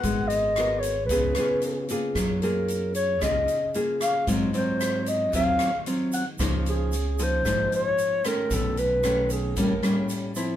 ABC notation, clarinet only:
X:1
M:4/4
L:1/8
Q:1/4=113
K:Db
V:1 name="Clarinet"
g e2 d _c3 z | z B2 d e2 z f | z c2 e f2 z g | z A2 c2 d2 B |
=A =B2 _A _B2 z2 |]